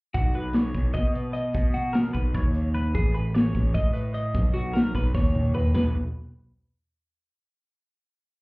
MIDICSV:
0, 0, Header, 1, 4, 480
1, 0, Start_track
1, 0, Tempo, 399734
1, 175, Time_signature, 7, 3, 24, 8
1, 10106, End_track
2, 0, Start_track
2, 0, Title_t, "Clean electric guitar"
2, 0, Program_c, 0, 27
2, 173, Note_on_c, 0, 66, 88
2, 414, Note_off_c, 0, 66, 0
2, 421, Note_on_c, 0, 71, 78
2, 655, Note_off_c, 0, 71, 0
2, 655, Note_on_c, 0, 73, 74
2, 1122, Note_off_c, 0, 73, 0
2, 1127, Note_on_c, 0, 75, 73
2, 1372, Note_off_c, 0, 75, 0
2, 1372, Note_on_c, 0, 71, 72
2, 1596, Note_off_c, 0, 71, 0
2, 1601, Note_on_c, 0, 75, 66
2, 2087, Note_off_c, 0, 75, 0
2, 2089, Note_on_c, 0, 66, 70
2, 2318, Note_on_c, 0, 70, 76
2, 2331, Note_off_c, 0, 66, 0
2, 2558, Note_off_c, 0, 70, 0
2, 2563, Note_on_c, 0, 71, 74
2, 2817, Note_off_c, 0, 71, 0
2, 2817, Note_on_c, 0, 73, 69
2, 3291, Note_off_c, 0, 73, 0
2, 3296, Note_on_c, 0, 71, 70
2, 3536, Note_off_c, 0, 71, 0
2, 3539, Note_on_c, 0, 68, 84
2, 3776, Note_on_c, 0, 71, 77
2, 3778, Note_off_c, 0, 68, 0
2, 4018, Note_off_c, 0, 71, 0
2, 4018, Note_on_c, 0, 73, 75
2, 4492, Note_off_c, 0, 73, 0
2, 4496, Note_on_c, 0, 75, 66
2, 4719, Note_off_c, 0, 75, 0
2, 4724, Note_on_c, 0, 71, 67
2, 4970, Note_off_c, 0, 71, 0
2, 4975, Note_on_c, 0, 75, 76
2, 5448, Note_on_c, 0, 66, 72
2, 5457, Note_off_c, 0, 75, 0
2, 5686, Note_on_c, 0, 70, 69
2, 5694, Note_off_c, 0, 66, 0
2, 5933, Note_off_c, 0, 70, 0
2, 5948, Note_on_c, 0, 71, 73
2, 6175, Note_off_c, 0, 71, 0
2, 6180, Note_on_c, 0, 73, 73
2, 6655, Note_off_c, 0, 73, 0
2, 6660, Note_on_c, 0, 71, 69
2, 6885, Note_off_c, 0, 71, 0
2, 6899, Note_on_c, 0, 71, 72
2, 7123, Note_off_c, 0, 71, 0
2, 10106, End_track
3, 0, Start_track
3, 0, Title_t, "Picked electric bass"
3, 0, Program_c, 1, 34
3, 177, Note_on_c, 1, 35, 92
3, 853, Note_off_c, 1, 35, 0
3, 902, Note_on_c, 1, 35, 86
3, 1124, Note_off_c, 1, 35, 0
3, 1144, Note_on_c, 1, 47, 75
3, 1817, Note_off_c, 1, 47, 0
3, 1864, Note_on_c, 1, 47, 84
3, 2538, Note_off_c, 1, 47, 0
3, 2584, Note_on_c, 1, 35, 99
3, 2806, Note_off_c, 1, 35, 0
3, 2827, Note_on_c, 1, 39, 76
3, 3500, Note_off_c, 1, 39, 0
3, 3545, Note_on_c, 1, 33, 95
3, 4220, Note_off_c, 1, 33, 0
3, 4270, Note_on_c, 1, 33, 92
3, 4490, Note_off_c, 1, 33, 0
3, 4503, Note_on_c, 1, 45, 75
3, 5221, Note_on_c, 1, 35, 85
3, 5239, Note_off_c, 1, 45, 0
3, 5899, Note_off_c, 1, 35, 0
3, 5941, Note_on_c, 1, 35, 96
3, 6167, Note_off_c, 1, 35, 0
3, 6177, Note_on_c, 1, 39, 80
3, 6857, Note_off_c, 1, 39, 0
3, 6908, Note_on_c, 1, 35, 88
3, 7128, Note_off_c, 1, 35, 0
3, 10106, End_track
4, 0, Start_track
4, 0, Title_t, "Drums"
4, 171, Note_on_c, 9, 42, 86
4, 175, Note_on_c, 9, 36, 113
4, 291, Note_off_c, 9, 42, 0
4, 295, Note_off_c, 9, 36, 0
4, 399, Note_on_c, 9, 42, 53
4, 519, Note_off_c, 9, 42, 0
4, 641, Note_on_c, 9, 42, 77
4, 653, Note_on_c, 9, 38, 99
4, 761, Note_off_c, 9, 42, 0
4, 773, Note_off_c, 9, 38, 0
4, 892, Note_on_c, 9, 42, 62
4, 895, Note_on_c, 9, 36, 70
4, 1012, Note_off_c, 9, 42, 0
4, 1015, Note_off_c, 9, 36, 0
4, 1127, Note_on_c, 9, 42, 76
4, 1136, Note_on_c, 9, 36, 88
4, 1139, Note_on_c, 9, 38, 30
4, 1247, Note_off_c, 9, 42, 0
4, 1256, Note_off_c, 9, 36, 0
4, 1259, Note_off_c, 9, 38, 0
4, 1384, Note_on_c, 9, 42, 63
4, 1504, Note_off_c, 9, 42, 0
4, 1613, Note_on_c, 9, 42, 65
4, 1733, Note_off_c, 9, 42, 0
4, 1850, Note_on_c, 9, 42, 80
4, 1856, Note_on_c, 9, 36, 101
4, 1970, Note_off_c, 9, 42, 0
4, 1976, Note_off_c, 9, 36, 0
4, 2095, Note_on_c, 9, 42, 53
4, 2215, Note_off_c, 9, 42, 0
4, 2333, Note_on_c, 9, 42, 79
4, 2345, Note_on_c, 9, 38, 104
4, 2453, Note_off_c, 9, 42, 0
4, 2465, Note_off_c, 9, 38, 0
4, 2578, Note_on_c, 9, 36, 70
4, 2579, Note_on_c, 9, 42, 56
4, 2698, Note_off_c, 9, 36, 0
4, 2699, Note_off_c, 9, 42, 0
4, 2817, Note_on_c, 9, 36, 89
4, 2820, Note_on_c, 9, 42, 72
4, 2937, Note_off_c, 9, 36, 0
4, 2940, Note_off_c, 9, 42, 0
4, 3054, Note_on_c, 9, 42, 58
4, 3174, Note_off_c, 9, 42, 0
4, 3305, Note_on_c, 9, 42, 54
4, 3425, Note_off_c, 9, 42, 0
4, 3542, Note_on_c, 9, 36, 100
4, 3548, Note_on_c, 9, 42, 72
4, 3662, Note_off_c, 9, 36, 0
4, 3668, Note_off_c, 9, 42, 0
4, 3779, Note_on_c, 9, 42, 51
4, 3899, Note_off_c, 9, 42, 0
4, 4025, Note_on_c, 9, 42, 71
4, 4037, Note_on_c, 9, 38, 101
4, 4146, Note_off_c, 9, 42, 0
4, 4158, Note_off_c, 9, 38, 0
4, 4260, Note_on_c, 9, 36, 66
4, 4275, Note_on_c, 9, 42, 54
4, 4381, Note_off_c, 9, 36, 0
4, 4395, Note_off_c, 9, 42, 0
4, 4501, Note_on_c, 9, 36, 88
4, 4508, Note_on_c, 9, 42, 70
4, 4622, Note_off_c, 9, 36, 0
4, 4628, Note_off_c, 9, 42, 0
4, 4741, Note_on_c, 9, 42, 60
4, 4861, Note_off_c, 9, 42, 0
4, 4979, Note_on_c, 9, 42, 60
4, 5099, Note_off_c, 9, 42, 0
4, 5220, Note_on_c, 9, 36, 113
4, 5223, Note_on_c, 9, 42, 83
4, 5340, Note_off_c, 9, 36, 0
4, 5343, Note_off_c, 9, 42, 0
4, 5475, Note_on_c, 9, 42, 54
4, 5595, Note_off_c, 9, 42, 0
4, 5711, Note_on_c, 9, 42, 82
4, 5723, Note_on_c, 9, 38, 98
4, 5831, Note_off_c, 9, 42, 0
4, 5843, Note_off_c, 9, 38, 0
4, 5941, Note_on_c, 9, 36, 67
4, 5950, Note_on_c, 9, 42, 58
4, 6061, Note_off_c, 9, 36, 0
4, 6071, Note_off_c, 9, 42, 0
4, 6179, Note_on_c, 9, 36, 99
4, 6189, Note_on_c, 9, 38, 50
4, 6299, Note_off_c, 9, 36, 0
4, 6309, Note_off_c, 9, 38, 0
4, 6423, Note_on_c, 9, 47, 69
4, 6543, Note_off_c, 9, 47, 0
4, 6655, Note_on_c, 9, 43, 91
4, 6775, Note_off_c, 9, 43, 0
4, 6903, Note_on_c, 9, 43, 97
4, 6903, Note_on_c, 9, 53, 81
4, 6915, Note_on_c, 9, 38, 100
4, 7023, Note_off_c, 9, 43, 0
4, 7023, Note_off_c, 9, 53, 0
4, 7035, Note_off_c, 9, 38, 0
4, 10106, End_track
0, 0, End_of_file